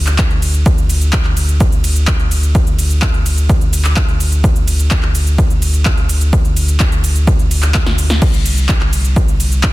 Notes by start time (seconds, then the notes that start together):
Already playing: D2
0.07 clap, closed hi-hat, shaker
0.18 kick, clap, closed hi-hat, shaker
0.30 closed hi-hat
0.42 open hi-hat, ride, shaker
0.54 closed hi-hat, shaker
0.66 D2, kick, closed hi-hat, ride, shaker
0.78 shaker
0.90 open hi-hat, ride, shaker
1.01 closed hi-hat, shaker
1.13 kick, clap, closed hi-hat, ride, shaker
1.25 clap
1.37 open hi-hat, ride, shaker
1.49 closed hi-hat, shaker
1.60 kick, closed hi-hat, ride, shaker
1.72 shaker
1.84 open hi-hat, ride, shaker
1.96 closed hi-hat, shaker
2.07 kick, clap, closed hi-hat, ride, shaker
2.19 closed hi-hat
2.31 open hi-hat, ride, shaker
2.43 closed hi-hat, shaker
2.55 kick, closed hi-hat, ride, shaker
2.67 shaker
2.79 open hi-hat, ride, shaker
2.90 closed hi-hat, shaker
3.02 kick, clap, closed hi-hat, shaker
3.14 closed hi-hat
3.26 open hi-hat, ride, shaker
3.38 closed hi-hat, shaker
3.49 kick, closed hi-hat, ride, shaker
3.61 closed hi-hat, shaker
3.73 open hi-hat, ride, shaker
3.85 clap, closed hi-hat, shaker
3.96 kick, clap, closed hi-hat, ride, shaker
4.09 closed hi-hat
4.20 open hi-hat, ride, shaker
4.32 closed hi-hat, shaker
4.44 kick, closed hi-hat, ride, shaker
4.56 shaker
4.68 open hi-hat, ride, shaker
4.79 closed hi-hat, shaker
4.91 kick, clap, closed hi-hat, ride, shaker
5.03 clap
5.15 open hi-hat, ride, shaker
5.27 closed hi-hat, shaker
5.38 kick, closed hi-hat, ride, shaker
5.50 shaker
5.62 open hi-hat, ride, shaker
5.74 closed hi-hat, shaker
5.85 kick, clap, closed hi-hat, ride, shaker
5.97 closed hi-hat
6.09 open hi-hat, ride, shaker
6.21 closed hi-hat, shaker
6.33 kick, closed hi-hat, ride, shaker
6.45 closed hi-hat, shaker
6.57 open hi-hat, ride, shaker
6.68 closed hi-hat, shaker
6.80 kick, clap, closed hi-hat, shaker
6.92 closed hi-hat, shaker
7.04 open hi-hat, ride, shaker
7.16 closed hi-hat, shaker
7.27 kick, closed hi-hat, ride, shaker
7.39 closed hi-hat, shaker
7.51 open hi-hat, ride, shaker
7.63 clap, closed hi-hat, shaker
7.74 kick, snare, clap, closed hi-hat, ride, shaker
7.86 snare, closed hi-hat
7.98 open hi-hat, ride, shaker
8.10 snare, closed hi-hat, shaker
8.22 C2, kick, closed hi-hat, crash, ride, shaker
8.34 shaker
8.45 open hi-hat, ride, shaker
8.57 closed hi-hat, shaker
8.69 kick, clap, closed hi-hat, shaker
8.81 clap
8.93 open hi-hat, ride, shaker
9.05 closed hi-hat, shaker
9.16 kick, closed hi-hat, ride, shaker
9.28 shaker
9.40 open hi-hat, ride, shaker
9.52 closed hi-hat, shaker
9.63 kick, clap, closed hi-hat, shaker